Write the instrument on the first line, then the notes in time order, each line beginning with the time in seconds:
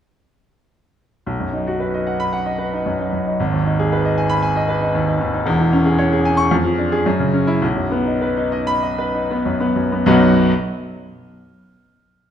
grand piano
1.26 B1
1.40 F#2
1.53 D#4
1.67 F#4
1.80 B4
1.94 D#5
2.07 F#5
2.20 B5
2.33 F#5
2.46 D#5
2.58 B4
2.73 D#4
2.86 F#2
2.99 D#4
3.12 F#2
3.26 D#4
3.40 G#1
3.52 D#2
3.66 D#4
3.79 G#4
3.92 B4
4.05 D#5
4.18 G#5
4.30 B5
4.42 G#5
4.56 D#5
4.68 B4
4.82 D#4
4.95 D#2
5.07 D#4
5.21 D#2
5.34 D#4
5.45 E1 E2
5.60 E3
5.73 C#4
5.85 G#4
5.99 C#5
6.13 G#4
6.25 G#5
6.37 C#6
6.51 F2
6.64 F3
6.78 D4
6.92 G#4
7.06 F#2
7.20 C#3
7.34 C#4
7.47 E4
7.62 B1
7.76 F#2
7.92 B3
8.06 D#4
8.21 B4
8.37 D#4
8.52 D#5
8.67 B5
8.83 D#5
8.99 B4
9.15 D#4
9.31 B3
9.46 F#2
9.60 B3
9.76 F#2
9.92 B3
10.06 B1 F#2 F#3 B3 D#4 F#4